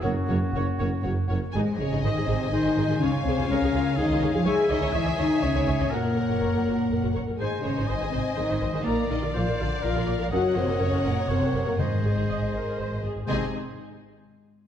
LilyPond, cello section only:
\new Staff \with { instrumentName = "Cello section" } { \clef bass \time 3/4 \key aes \mixolydian \tempo 4 = 123 ges,8 ges,8 ges,8 ges,8 ges,8 ges,8 | aes8 des8 ees8 c8 ees8. ees16 | des8 c8 des4 ees8. f16 | aes8 ees8 fes8 ees8 des4 |
bes,2~ bes,8 r8 | aes8 des8 ees8 c8 ees8. ees16 | bes8 ees8 f8 d8 f8. f16 | ges8 c8 des8 bes,8 c8. bes,16 |
aes,2~ aes,8 r8 | c8 r2 r8 | }